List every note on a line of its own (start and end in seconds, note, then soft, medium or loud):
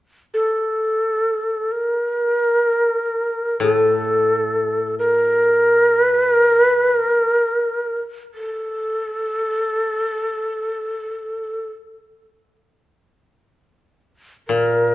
0.34 1.73 A4 soft
1.72 3.60 A#4 medium
3.60 6.98 A2 soft
3.60 4.95 A4 medium
4.99 6.05 A#4 medium
6.05 6.33 B4 medium
6.33 6.65 A#4 medium
6.65 6.93 B4 medium
6.93 7.98 A#4 medium
8.35 11.72 A4 medium
14.48 14.95 A#2 soft
14.48 14.95 A#4 medium